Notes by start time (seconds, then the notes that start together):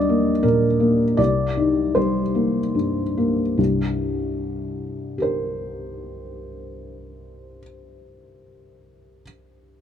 Already playing: D#2 G3 D4 D5 D#5
0.09 A#3
0.43 A#2 A#4
0.80 A#3
1.17 C2 D5
1.57 D#4
1.95 G3 C5
2.35 A#3
2.74 G2
3.17 A#3
3.57 C2 G2
5.18 G4 A#4
5.22 C5